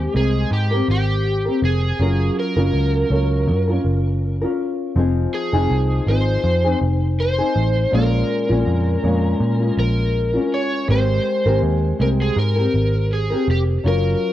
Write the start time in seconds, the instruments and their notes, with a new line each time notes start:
Already playing: nylon-string guitar G#3 C4 G4 A#4, electric slide guitar G4
0.14 picked electric bass C2, nylon-string guitar G#3 C4 A#4, electric slide guitar G#4
0.51 picked electric bass G#2, electric slide guitar G4
0.71 nylon-string guitar C4 G4 A#4
0.88 picked electric bass G#1, electric slide guitar G4
1.45 nylon-string guitar C4 A#4
1.62 picked electric bass F1, electric slide guitar G#4
1.99 picked electric bass F#1, nylon-string guitar F#3 C#4 F4 A#4
2.40 electric slide guitar A#4
2.57 picked electric bass F#1, nylon-string guitar F#3 C#4 F4 A#4
2.74 picked electric bass C#2
3.10 picked electric bass C#2, nylon-string guitar F#3 C#4 F4 A#4
3.47 picked electric bass F#2
3.67 nylon-string guitar C#4 F4 A#4
3.84 picked electric bass F#1
4.42 nylon-string guitar C#4 F4 A#4
4.95 picked electric bass F1, nylon-string guitar F3 C4 D#4 G#4
5.34 electric slide guitar G#4
5.53 picked electric bass F1, nylon-string guitar F3 C4 D#4 G#4
5.70 picked electric bass C2
6.07 picked electric bass G#1, nylon-string guitar F3 C4 D#4 G#4, electric slide guitar C5
6.44 picked electric bass F2
6.64 nylon-string guitar C4 D#4 G#4
6.81 picked electric bass F1
7.20 electric slide guitar C5
7.38 nylon-string guitar C4 D#4 G#4
7.56 picked electric bass A1
7.91 picked electric bass A#1, nylon-string guitar A#2 G#3 C#4 F4, electric slide guitar A#4
8.49 picked electric bass A#1, nylon-string guitar A#2 G#3 C#4 F4
8.66 picked electric bass F2
9.03 picked electric bass F2, nylon-string guitar A#2 G#3 C#4 F4
9.40 picked electric bass A#2
9.60 nylon-string guitar G#3 C#4 F4
9.77 picked electric bass A#1, electric slide guitar A#4
10.33 nylon-string guitar G#3 C#4 F4
10.54 electric slide guitar C#5
10.88 picked electric bass G#1, nylon-string guitar G#3 C4 G4 A#4, electric slide guitar C5
11.45 picked electric bass G#1, nylon-string guitar G#3 C4 G4 A#4
11.62 picked electric bass D#2
11.99 picked electric bass C2, nylon-string guitar G#3 C4 G4 A#4, electric slide guitar A#4
12.22 electric slide guitar G#4
12.37 picked electric bass G#2, electric slide guitar A#4
12.56 nylon-string guitar C4 G4 A#4
12.74 picked electric bass G#1
13.13 electric slide guitar G#4
13.30 nylon-string guitar C4 G4 A#4
13.48 picked electric bass F1, electric slide guitar G4
13.84 picked electric bass F#1, nylon-string guitar F#3 C#4 F4 A#4, electric slide guitar A#4